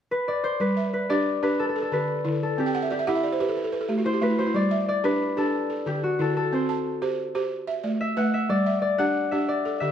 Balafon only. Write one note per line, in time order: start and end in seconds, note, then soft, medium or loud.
0.60 0.93 G3 medium
0.77 1.26 E5 medium
1.10 1.41 D4 medium
1.10 1.42 G4 medium
1.43 1.59 D4 medium
1.43 1.76 G4 medium
1.76 2.25 A4 medium
1.92 2.24 D3 medium
1.92 2.41 G4 soft
2.25 2.58 D3 medium
2.25 2.74 E4 medium
2.58 2.91 C4 medium
2.66 2.82 G5 medium
2.74 2.90 F#5 medium
2.82 2.98 E5 medium
2.90 3.06 D5 medium
2.99 3.14 E5 medium
3.07 3.39 G4 medium
3.07 3.23 F#5 medium
3.15 3.31 E5 medium
3.23 3.39 D5 medium
3.32 3.48 C5 medium
3.40 3.57 G4 medium
3.40 3.55 B4 medium
3.48 3.63 A4 medium
3.57 3.71 B4 medium
3.64 3.79 A4 medium
3.72 3.88 B4 medium
3.81 3.96 A4 medium
3.89 4.20 A3 medium
3.89 4.05 G4 medium
3.98 4.13 F#4 medium
4.05 4.21 E4 medium
4.13 4.29 G4 medium
4.22 4.55 A3 medium
4.22 4.37 F#4 medium
4.30 4.45 E4 medium
4.38 4.54 F#4 medium
4.46 4.62 E4 medium
4.54 4.88 G3 medium
4.71 5.21 E5 medium
5.04 5.36 D4 medium
5.04 5.36 G4 medium
5.37 5.54 D4 medium
5.37 5.70 G4 medium
5.70 6.19 A4 medium
5.86 6.18 D3 medium
5.86 6.36 G4 medium
6.19 6.52 D3 medium
6.19 6.69 E4 medium
6.53 6.86 C4 medium
6.69 7.18 A5 medium
7.02 7.34 G4 medium
7.02 7.34 C5 medium
7.35 7.51 G4 medium
7.35 7.68 C5 medium
7.67 8.17 E5 medium
7.84 8.16 A3 medium
7.84 8.33 D5 medium
8.17 8.50 A3 medium
8.17 8.66 B4 medium
8.50 8.83 G3 medium
8.66 9.16 E5 medium
8.99 9.31 D4 medium
8.99 9.31 G4 medium
9.32 9.49 D4 medium
9.32 9.65 G4 medium
9.65 9.92 A4 medium
9.81 9.92 D3 medium
9.81 9.92 G4 medium